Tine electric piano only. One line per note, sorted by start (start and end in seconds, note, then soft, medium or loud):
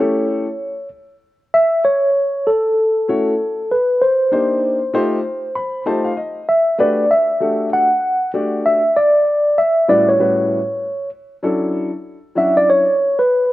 0.00 0.88 C#5 medium
1.54 1.83 E5 loud
1.85 2.48 C#5 medium
2.47 3.74 A4 medium
3.71 4.03 B4 medium
4.02 5.83 C5 medium
6.49 6.77 E5 medium
6.80 7.12 D5 medium
7.11 7.69 E5 medium
7.73 8.31 F#5 loud
8.66 8.97 E5 medium
8.96 9.60 D5 medium
9.58 9.90 E5 medium
9.89 10.09 D5 medium
10.09 11.09 C#5 medium
12.38 12.56 E5 medium
12.57 12.69 D5 loud
12.70 13.20 C#5 loud
13.19 13.53 B4 medium